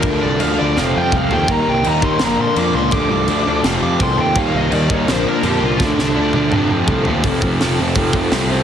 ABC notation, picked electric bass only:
X:1
M:4/4
L:1/8
Q:1/4=167
K:Fmix
V:1 name="Picked electric bass" clef=bass
D,, C,, D,, D,, F,,, F,, C,, E,, | E,, C,, E,, E,, B,,, B,, F,, ^C,, | D,, C,, D,, D,, F,,, F,, C,, E,, | E,, C,, E,, E,, B,,, B,, F,, C,, |
D,, C,, D,, D,, F,,, F,, C,, E,, | F,,, F,,, F,,, F,,, F,,, F,,, C,,2 |]